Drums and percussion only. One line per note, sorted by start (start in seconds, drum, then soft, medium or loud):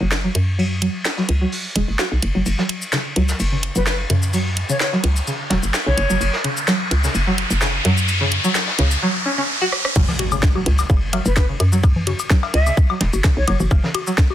0.11 snare medium
0.11 snare loud
0.11 ride medium
0.35 closed hi-hat medium
0.35 ride medium
0.59 ride medium
0.82 closed hi-hat loud
0.82 ride medium
1.05 snare loud
1.05 snare medium
1.05 ride medium
1.17 snare medium
1.28 closed hi-hat medium
1.28 ride medium
1.52 open hi-hat medium
1.75 closed hi-hat loud
1.75 ride medium
1.87 ride soft
1.99 snare medium
1.99 snare loud
1.99 ride medium
2.22 closed hi-hat medium
2.22 ride medium
2.35 ride soft
2.45 ride medium
2.45 shaker soft
2.59 snare medium
2.69 closed hi-hat medium
2.69 ride medium
2.82 shaker soft
2.93 snare loud
2.93 snare medium
2.93 ride medium
2.93 shaker soft
3.16 closed hi-hat medium
3.16 ride medium
3.29 snare medium
3.29 shaker soft
3.40 ride medium
3.40 shaker soft
3.63 closed hi-hat medium
3.63 ride medium
3.76 shaker soft
3.86 snare loud
3.86 snare medium
3.86 ride medium
3.86 shaker soft
4.10 closed hi-hat medium
4.10 ride medium
4.23 shaker medium
4.33 ride medium
4.33 shaker soft
4.57 closed hi-hat medium
4.57 ride medium
4.69 shaker soft
4.80 snare medium
4.80 snare loud
4.80 ride medium
4.80 shaker soft
4.93 snare medium
5.04 closed hi-hat medium
5.04 ride medium
5.16 shaker soft
5.27 ride medium
5.27 shaker soft
5.50 snare loud
5.50 closed hi-hat medium
5.50 ride medium
5.63 shaker medium
5.73 snare loud
5.73 snare medium
5.73 ride medium
5.73 shaker soft
5.98 closed hi-hat medium
5.98 ride medium
6.10 ride soft
6.10 shaker medium
6.21 ride medium
6.21 shaker soft
6.33 snare medium
6.44 closed hi-hat medium
6.44 ride medium
6.57 shaker soft
6.68 snare loud
6.68 snare medium
6.68 ride medium
6.68 shaker soft
6.91 closed hi-hat medium
6.91 ride medium
7.04 snare medium
7.04 shaker medium
7.14 ride medium
7.14 shaker soft
7.38 closed hi-hat medium
7.38 ride medium
7.51 shaker medium
7.61 snare loud
7.61 snare medium
7.61 ride medium
7.61 shaker soft
7.85 closed hi-hat medium
7.85 ride medium
7.98 shaker medium
8.08 ride medium
8.08 shaker soft
8.31 closed hi-hat medium
8.31 ride medium
8.44 shaker medium
8.55 snare loud
8.55 snare medium
8.55 ride medium
8.55 shaker soft
8.68 snare medium
8.79 closed hi-hat medium
8.79 ride medium
8.91 shaker medium
9.72 cross-stick medium
9.85 cross-stick medium
9.96 kick loud
9.96 crash loud
9.96 ride medium
9.96 shaker soft
10.08 snare soft
10.08 low conga medium
10.08 high woodblock soft
10.19 closed hi-hat medium
10.19 ride medium
10.19 low bongo medium
10.32 high woodblock medium
10.32 shaker medium
10.42 kick loud
10.42 snare loud
10.42 snare medium
10.42 ride medium
10.42 shaker soft
10.55 low bongo medium
10.55 high woodblock soft
10.66 closed hi-hat medium
10.66 ride medium
10.79 snare medium
10.79 high woodblock medium
10.79 shaker medium
10.89 kick loud
10.89 ride medium
10.89 shaker soft
11.13 closed hi-hat medium
11.13 ride medium
11.13 cowbell medium
11.13 high woodblock soft
11.26 shaker medium
11.37 kick loud
11.37 snare loud
11.37 ride loud
11.37 high woodblock medium
11.37 shaker soft
11.60 closed hi-hat medium
11.60 ride medium
11.60 high woodblock soft
11.73 shaker medium
11.83 kick loud
11.83 ride medium
11.83 high woodblock medium
11.83 shaker soft
11.96 low conga medium
12.07 closed hi-hat loud
12.07 ride medium
12.07 low bongo medium
12.19 high woodblock soft
12.19 shaker soft
12.30 kick loud
12.30 snare medium
12.30 snare loud
12.30 shaker soft
12.43 snare medium
12.43 cowbell medium
12.43 high woodblock medium
12.54 closed hi-hat medium
12.54 ride medium
12.66 high woodblock soft
12.66 shaker medium
12.77 kick loud
12.77 shaker soft
12.90 high woodblock medium
13.01 snare loud
13.01 closed hi-hat loud
13.01 ride medium
13.13 low bongo medium
13.13 shaker medium
13.24 kick loud
13.24 snare loud
13.24 snare medium
13.24 ride medium
13.24 low conga medium
13.24 high woodblock soft
13.24 shaker soft
13.48 closed hi-hat medium
13.48 ride medium
13.48 high woodblock medium
13.60 ride soft
13.60 low bongo medium
13.60 low conga medium
13.60 shaker medium
13.70 kick loud
13.70 ride medium
13.70 cowbell medium
13.70 high woodblock soft
13.70 shaker soft
13.84 snare medium
13.84 low conga medium
13.95 closed hi-hat medium
13.95 ride medium
13.95 low bongo medium
13.95 high woodblock medium
14.07 shaker soft
14.18 kick loud
14.18 snare medium
14.18 snare loud
14.18 shaker soft
14.30 low bongo medium
14.30 high woodblock soft